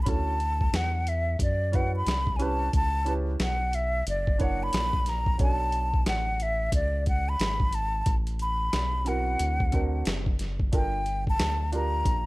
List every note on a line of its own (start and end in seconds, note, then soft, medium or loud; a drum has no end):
0.03 0.70 D2 loud
0.03 0.32 C#4 medium
0.03 0.10 B5 medium
0.03 kick loud
0.03 closed hi-hat medium
0.07 0.32 E4 medium
0.07 0.33 F#4 medium
0.07 0.33 A4 medium
0.07 0.77 A5 loud
0.40 closed hi-hat medium
0.61 kick medium
0.73 1.36 E2 loud
0.73 1.10 F#5 loud
0.73 snare loud
0.73 closed hi-hat medium
1.07 1.41 E5 medium
1.07 closed hi-hat medium
1.39 2.03 F#2 loud
1.39 1.77 D5 medium
1.39 kick loud
1.39 closed hi-hat loud
1.72 1.98 C#4 medium
1.72 1.99 E4 medium
1.72 1.99 F#4 medium
1.72 2.00 B4 medium
1.72 1.95 F#5 medium
1.72 kick medium
1.72 closed hi-hat medium
1.96 2.38 B5 loud
2.06 2.70 C2 medium
2.06 snare loud
2.06 closed hi-hat medium
2.27 kick loud
2.36 2.65 C#4 medium
2.36 2.66 E4 medium
2.36 2.44 G#5 medium
2.36 closed hi-hat medium
2.41 2.66 G4 medium
2.41 2.66 B4 medium
2.41 2.74 A5 loud
2.73 3.37 C#2 loud
2.73 3.13 A5 loud
2.73 kick loud
2.73 closed hi-hat medium
3.05 3.32 C#4 medium
3.05 3.32 E4 medium
3.05 3.32 G4 medium
3.05 3.33 B4 medium
3.05 closed hi-hat medium
3.40 4.03 B1 medium
3.40 3.76 F#5 medium
3.40 snare medium
3.40 closed hi-hat medium
3.73 4.07 E5 medium
3.73 closed hi-hat medium
4.07 4.70 F#1 loud
4.07 4.39 D5 loud
4.07 closed hi-hat loud
4.27 kick loud
4.39 4.90 A#3 medium
4.39 4.89 D4 medium
4.39 4.90 E4 medium
4.39 4.90 C#5 medium
4.39 4.65 F#5 loud
4.39 kick medium
4.39 closed hi-hat medium
4.63 5.11 B5 loud
4.73 5.37 A#1 medium
4.73 snare loud
4.73 closed hi-hat medium
4.93 kick loud
5.06 5.41 A#5 loud
5.06 snare soft
5.06 closed hi-hat medium
5.26 kick loud
5.38 6.03 B1 loud
5.38 5.47 C#4 soft
5.38 6.34 F#4 medium
5.38 6.35 A4 medium
5.38 6.35 C#5 medium
5.38 kick loud
5.38 closed hi-hat medium
5.42 6.37 D4 medium
5.42 6.04 A5 loud
5.72 closed hi-hat medium
5.94 kick medium
6.06 6.70 A1 medium
6.06 6.44 F#5 medium
6.06 snare loud
6.06 closed hi-hat medium
6.40 6.74 E5 medium
6.40 closed hi-hat medium
6.72 7.36 C#2 loud
6.72 7.05 D5 medium
6.72 kick loud
6.72 closed hi-hat loud
7.06 7.30 F#5 medium
7.06 kick medium
7.06 closed hi-hat medium
7.29 7.76 B5 loud
7.40 8.03 G#1 loud
7.40 snare loud
7.40 closed hi-hat medium
7.60 kick loud
7.73 8.15 A5 loud
7.73 closed hi-hat medium
8.06 8.70 A1 loud
8.06 kick loud
8.06 closed hi-hat medium
8.27 closed hi-hat medium
8.39 9.09 B5 medium
8.39 closed hi-hat medium
8.73 9.36 B1 medium
8.73 snare loud
8.73 closed hi-hat medium
9.05 9.71 C4 medium
9.05 10.01 E4 medium
9.05 9.73 F#4 medium
9.05 9.73 A#4 medium
9.05 10.07 F#5 medium
9.05 closed hi-hat medium
9.39 10.03 D2 loud
9.39 closed hi-hat loud
9.60 kick loud
9.72 10.14 C4 medium
9.72 10.15 D4 medium
9.72 10.15 F#4 medium
9.72 10.16 A#4 medium
9.72 kick medium
9.72 closed hi-hat medium
10.05 10.70 F#1 medium
10.05 snare loud
10.05 closed hi-hat medium
10.26 kick loud
10.39 snare soft
10.39 closed hi-hat medium
10.60 kick medium
10.72 11.36 G1 medium
10.72 10.98 D4 medium
10.72 10.99 F4 medium
10.72 10.99 A4 medium
10.72 11.00 A#4 medium
10.72 11.25 G5 loud
10.72 kick loud
10.72 closed hi-hat medium
11.06 closed hi-hat medium
11.27 11.71 A5 loud
11.27 kick medium
11.39 12.03 D2 medium
11.39 snare loud
11.39 closed hi-hat medium
11.72 12.26 D4 medium
11.72 12.26 F4 medium
11.72 12.26 G4 medium
11.72 12.26 A#4 medium
11.72 12.26 A#5 loud
11.72 closed hi-hat medium
12.05 12.26 A#1 loud
12.05 kick loud
12.05 closed hi-hat medium